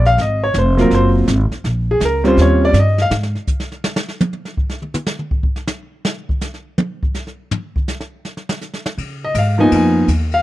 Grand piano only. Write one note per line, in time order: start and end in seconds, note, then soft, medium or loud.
0.06 0.18 F5 loud
0.21 0.43 D#5 medium
0.44 0.55 C#5 medium
0.58 0.80 C5 medium
0.77 1.25 F#3 medium
0.77 1.25 A#3 medium
0.77 1.25 C4 medium
0.77 1.25 F4 medium
0.77 0.92 A#4 medium
0.95 1.08 C5 medium
1.91 2.02 G#4 medium
2.05 2.26 A#4 medium
2.24 2.71 G3 medium
2.24 2.71 C4 medium
2.24 2.72 C#4 medium
2.24 2.72 F4 medium
2.24 2.39 C5 medium
2.42 2.63 C#5 medium
2.65 2.76 D5 loud
2.80 3.00 D#5 medium
3.02 3.13 F5 loud
9.24 9.36 D#5 medium
9.38 9.60 F5 medium
9.58 10.05 F3 medium
9.58 10.06 A#3 medium
9.58 10.06 B3 medium
9.58 10.06 D#4 medium
9.58 9.72 G#5 loud
9.76 10.08 G#5 medium
10.34 10.42 F5 loud